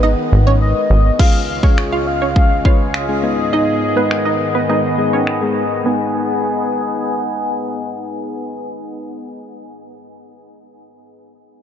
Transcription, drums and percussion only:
1.19 kick loud
1.19 crash medium
1.63 kick medium
1.78 finger snap loud
2.36 kick medium
2.65 kick medium
2.94 finger snap loud
4.11 finger snap loud
5.27 finger snap loud

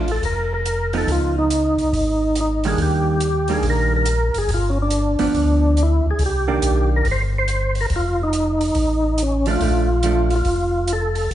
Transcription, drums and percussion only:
0.08 open hi-hat soft
0.23 kick soft
0.23 open hi-hat soft
0.66 closed hi-hat soft
0.93 open hi-hat soft
1.08 kick soft
1.08 open hi-hat soft
1.50 closed hi-hat soft
1.78 open hi-hat soft
1.93 kick soft
1.93 open hi-hat soft
2.35 closed hi-hat soft
2.64 open hi-hat soft
2.78 kick soft
2.78 open hi-hat soft
3.20 closed hi-hat soft
3.48 open hi-hat soft
3.63 kick soft
3.63 open hi-hat soft
4.06 closed hi-hat soft
4.34 open hi-hat soft
4.49 kick soft
4.49 open hi-hat soft
4.90 closed hi-hat soft
5.19 open hi-hat soft
5.34 kick soft
5.34 open hi-hat soft
5.77 closed hi-hat soft
6.19 kick soft
6.19 open hi-hat soft
6.62 closed hi-hat soft
7.05 kick soft
7.05 open hi-hat soft
7.48 closed hi-hat soft
7.75 open hi-hat soft
7.90 kick soft
7.90 open hi-hat soft
8.33 closed hi-hat soft
8.61 open hi-hat soft
8.75 kick soft
8.75 open hi-hat soft
9.18 closed hi-hat soft
9.46 open hi-hat soft
9.61 kick soft
9.61 open hi-hat soft
10.03 closed hi-hat soft
10.30 open hi-hat soft
10.45 kick soft
10.45 open hi-hat soft
10.87 closed hi-hat soft
11.15 open hi-hat soft
11.31 kick soft
11.31 open hi-hat soft

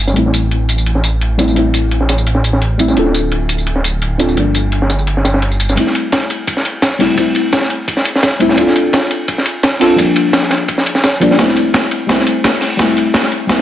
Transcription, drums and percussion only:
0.07 snare soft
0.07 tambourine soft
0.16 closed hi-hat medium
0.16 ride medium
0.26 snare soft
0.34 closed hi-hat medium
0.34 ride medium
0.34 tambourine medium
0.51 closed hi-hat medium
0.51 ride medium
0.68 closed hi-hat medium
0.68 ride medium
0.68 tambourine medium
0.78 tambourine soft
0.86 closed hi-hat medium
0.86 ride medium
0.95 snare soft
1.04 closed hi-hat medium
1.04 ride medium
1.04 tambourine medium
1.21 closed hi-hat medium
1.21 ride medium
1.39 snare soft
1.39 closed hi-hat medium
1.39 open hi-hat medium
1.39 tambourine medium
1.48 tambourine soft
1.56 closed hi-hat medium
1.56 ride medium
1.73 closed hi-hat medium
1.73 ride medium
1.73 tambourine medium
1.91 closed hi-hat medium
1.91 ride medium
2.01 snare soft
2.08 snare medium
2.08 closed hi-hat medium
2.08 ride medium
2.08 tambourine medium
2.18 tambourine soft
2.27 closed hi-hat medium
2.27 ride medium
2.35 snare soft
2.44 closed hi-hat medium
2.44 ride medium
2.44 tambourine medium
2.53 snare soft
2.62 closed hi-hat medium
2.62 ride medium
2.79 closed hi-hat medium
2.79 ride medium
2.79 tambourine medium
2.88 snare soft
2.88 tambourine soft
2.97 closed hi-hat medium
2.97 ride medium
3.05 snare soft
3.14 closed hi-hat medium
3.14 ride medium
3.14 tambourine medium
3.32 closed hi-hat medium
3.32 ride medium
3.48 closed hi-hat medium
3.48 ride medium
3.48 tambourine medium
3.58 tambourine soft
3.67 closed hi-hat medium
3.67 ride medium
3.76 snare soft
3.84 closed hi-hat medium
3.84 ride medium
3.84 tambourine medium
4.02 closed hi-hat medium
4.02 ride medium
4.19 snare soft
4.19 closed hi-hat medium
4.19 open hi-hat medium
4.19 tambourine medium
4.29 tambourine soft
4.37 closed hi-hat medium
4.37 ride medium
4.54 closed hi-hat medium
4.54 ride medium
4.54 tambourine medium
4.72 closed hi-hat medium
4.72 ride medium
4.82 snare medium
4.90 snare soft
4.90 closed hi-hat medium
4.90 ride medium
4.90 tambourine medium
4.99 tambourine soft
5.07 closed hi-hat medium
5.07 ride medium
5.17 snare soft
5.25 snare medium
5.25 closed hi-hat medium
5.25 ride medium
5.25 tambourine medium
5.34 snare medium
5.34 ride medium
5.42 closed hi-hat medium
5.42 ride medium
5.52 tambourine soft
5.60 closed hi-hat medium
5.60 ride medium
5.60 tambourine medium
5.69 snare soft
5.69 tambourine soft
5.77 kick medium
5.77 closed hi-hat medium
5.77 ride medium
5.87 snare soft
5.95 closed hi-hat medium
5.95 ride medium
6.12 kick medium
6.12 snare loud
6.12 closed hi-hat medium
6.12 ride medium
6.30 closed hi-hat medium
6.30 ride medium
6.47 kick medium
6.47 closed hi-hat medium
6.47 ride medium
6.57 snare soft
6.65 closed hi-hat medium
6.65 ride medium
6.82 kick medium
6.82 snare loud
6.82 closed hi-hat medium
6.82 ride medium
7.00 snare soft
7.00 closed hi-hat loud
7.00 open hi-hat medium
7.17 kick medium
7.17 closed hi-hat medium
7.17 ride medium
7.35 closed hi-hat medium
7.35 ride medium
7.53 kick loud
7.53 snare loud
7.53 closed hi-hat medium
7.53 ride medium
7.61 snare soft
7.70 closed hi-hat medium
7.88 kick medium
7.88 closed hi-hat medium
7.88 ride medium
7.97 snare soft
8.05 closed hi-hat medium
8.05 ride medium
8.15 snare medium
8.23 kick medium
8.23 snare loud
8.23 closed hi-hat medium
8.23 ride medium
8.40 closed hi-hat medium
8.40 ride medium
8.49 snare medium
8.57 kick medium
8.57 closed hi-hat medium
8.57 ride medium
8.67 snare soft
8.76 closed hi-hat medium
8.76 ride medium
8.93 kick medium
8.93 snare loud
8.93 closed hi-hat medium
8.93 ride medium
9.11 closed hi-hat medium
9.11 ride medium
9.28 kick loud
9.28 closed hi-hat medium
9.28 ride medium
9.38 snare soft
9.46 closed hi-hat medium
9.46 ride medium
9.63 kick loud
9.63 snare loud
9.63 closed hi-hat medium
9.63 ride medium
9.81 snare soft
9.81 closed hi-hat medium
9.81 open hi-hat medium
9.98 kick loud
9.98 closed hi-hat medium
9.98 ride medium
10.16 closed hi-hat medium
10.16 ride medium
10.33 kick loud
10.33 snare loud
10.33 closed hi-hat medium
10.33 ride medium
10.42 snare soft
10.51 snare medium
10.51 closed hi-hat medium
10.51 ride medium
10.68 kick medium
10.68 closed hi-hat medium
10.68 ride medium
10.78 snare medium
10.86 closed hi-hat medium
10.86 ride medium
10.95 snare medium
11.04 kick medium
11.04 snare loud
11.04 closed hi-hat medium
11.04 ride medium
11.21 closed hi-hat medium
11.21 ride medium
11.31 snare soft
11.39 kick loud
11.39 snare soft
11.39 closed hi-hat medium
11.39 ride medium
11.48 snare soft
11.57 closed hi-hat medium
11.57 ride medium
11.74 kick medium
11.74 snare loud
11.74 snare soft
11.74 closed hi-hat medium
11.74 ride medium
11.91 closed hi-hat medium
11.91 ride medium
12.09 kick loud
12.09 snare medium
12.09 closed hi-hat medium
12.09 ride medium
12.19 snare soft
12.27 closed hi-hat medium
12.27 ride medium
12.44 kick loud
12.44 snare medium
12.44 snare loud
12.44 closed hi-hat medium
12.44 ride medium
12.61 snare soft
12.61 closed hi-hat medium
12.61 open hi-hat medium
12.79 kick loud
12.79 snare medium
12.79 closed hi-hat medium
12.79 ride medium
12.97 closed hi-hat medium
12.97 ride medium
13.14 kick loud
13.14 snare loud
13.14 snare medium
13.14 closed hi-hat medium
13.14 ride medium
13.24 snare medium
13.32 closed hi-hat medium
13.49 kick loud
13.49 snare medium
13.49 closed hi-hat medium
13.49 ride medium

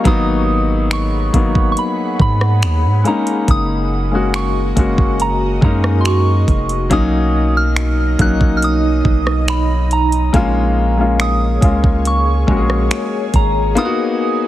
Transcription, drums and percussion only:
0.05 kick loud
0.05 closed hi-hat medium
0.91 finger snap loud
0.91 closed hi-hat medium
1.34 kick medium
1.34 closed hi-hat medium
1.55 kick loud
1.77 closed hi-hat medium
2.20 kick loud
2.41 cross-stick medium
2.62 finger snap loud
2.62 closed hi-hat medium
3.05 closed hi-hat medium
3.27 closed hi-hat medium
3.48 kick loud
3.48 closed hi-hat medium
4.34 finger snap loud
4.34 closed hi-hat medium
4.77 kick medium
4.77 closed hi-hat medium
4.98 kick loud
5.20 closed hi-hat medium
5.62 kick loud
5.84 cross-stick medium
6.05 finger snap loud
6.05 closed hi-hat medium
6.48 kick medium
6.48 closed hi-hat medium
6.69 closed hi-hat medium
6.91 kick loud
6.91 closed hi-hat medium
7.76 finger snap loud
7.76 closed hi-hat medium
8.19 kick medium
8.19 closed hi-hat medium
8.41 kick loud
8.62 closed hi-hat medium
9.05 kick loud
9.27 cross-stick medium
9.48 finger snap loud
9.48 closed hi-hat medium
9.91 closed hi-hat medium
10.12 closed hi-hat medium
10.34 kick loud
10.34 closed hi-hat medium
11.20 finger snap loud
11.20 closed hi-hat medium
11.62 kick medium
11.62 closed hi-hat medium
11.84 kick loud
12.05 closed hi-hat medium
12.48 kick loud
12.70 cross-stick medium
12.91 finger snap loud
12.91 closed hi-hat medium
13.34 kick medium
13.34 closed hi-hat medium
13.77 closed hi-hat medium

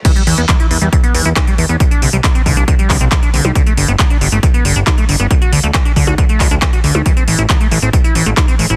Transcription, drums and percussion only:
0.05 kick loud
0.05 closed hi-hat loud
0.05 crash loud
0.16 closed hi-hat soft
0.27 open hi-hat loud
0.38 closed hi-hat soft
0.49 kick loud
0.49 clap loud
0.49 closed hi-hat loud
0.60 closed hi-hat soft
0.71 open hi-hat medium
0.82 closed hi-hat soft
0.93 kick loud
0.93 closed hi-hat medium
1.04 closed hi-hat soft
1.15 open hi-hat loud
1.25 closed hi-hat soft
1.36 kick loud
1.36 clap loud
1.36 closed hi-hat loud
1.36 percussion blips medium
1.47 closed hi-hat soft
1.58 open hi-hat medium
1.69 closed hi-hat soft
1.80 kick loud
1.80 closed hi-hat medium
1.91 closed hi-hat soft
2.02 open hi-hat loud
2.13 closed hi-hat soft
2.24 kick loud
2.24 clap loud
2.24 closed hi-hat medium
2.35 closed hi-hat soft
2.46 kick medium
2.46 open hi-hat loud
2.57 closed hi-hat soft
2.68 kick loud
2.68 closed hi-hat medium
2.79 closed hi-hat soft
2.90 kick medium
2.90 clap medium
2.90 open hi-hat loud
3.01 closed hi-hat soft
3.12 kick loud
3.12 clap loud
3.12 closed hi-hat loud
3.23 closed hi-hat soft
3.34 open hi-hat loud
3.45 closed hi-hat soft
3.45 percussion blips medium
3.55 kick loud
3.55 closed hi-hat medium
3.67 closed hi-hat soft
3.77 open hi-hat loud
3.88 closed hi-hat soft
3.99 kick loud
3.99 clap loud
3.99 closed hi-hat medium
4.10 closed hi-hat soft
4.21 open hi-hat loud
4.32 closed hi-hat soft
4.43 kick loud
4.43 closed hi-hat medium
4.54 closed hi-hat soft
4.65 open hi-hat loud
4.76 closed hi-hat soft
4.87 kick loud
4.87 clap loud
4.87 closed hi-hat medium
4.87 percussion blips medium
4.98 closed hi-hat soft
5.09 open hi-hat loud
5.20 closed hi-hat soft
5.31 kick loud
5.31 closed hi-hat medium
5.42 closed hi-hat soft
5.53 open hi-hat loud
5.64 closed hi-hat soft
5.74 kick loud
5.74 clap loud
5.74 closed hi-hat medium
5.85 closed hi-hat soft
5.96 kick medium
5.96 open hi-hat loud
6.07 closed hi-hat soft
6.07 percussion blips medium
6.18 kick loud
6.18 closed hi-hat medium
6.29 closed hi-hat soft
6.40 kick medium
6.40 clap medium
6.40 open hi-hat loud
6.51 closed hi-hat soft
6.62 kick loud
6.62 clap loud
6.62 closed hi-hat medium
6.73 closed hi-hat soft
6.84 open hi-hat loud
6.95 percussion blips medium
7.06 kick loud
7.06 closed hi-hat medium
7.17 closed hi-hat soft
7.28 open hi-hat loud
7.50 kick loud
7.50 clap loud
7.50 closed hi-hat medium
7.61 closed hi-hat soft
7.71 open hi-hat loud
7.82 closed hi-hat soft
7.93 kick loud
7.93 closed hi-hat medium
8.04 closed hi-hat soft
8.15 open hi-hat loud
8.26 closed hi-hat soft
8.37 kick loud
8.37 clap loud
8.37 closed hi-hat medium
8.37 percussion blips medium
8.48 closed hi-hat soft
8.59 open hi-hat medium
8.70 closed hi-hat soft

